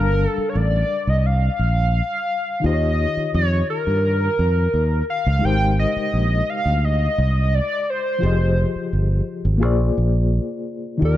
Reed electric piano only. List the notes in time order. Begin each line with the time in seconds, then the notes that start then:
Already playing: G3 D4 A#4 F5 A5
2.60 D#3 D#4 F4
2.66 G4 C5
2.74 C#5
5.39 G#3 D#4 G4
5.45 A#4 C5
8.19 F3 F4 G4
8.24 G#4 D#5
9.58 A#3 F4 G#4
9.63 C5 D5
10.98 D#3 D#4 F4
11.03 G4 D5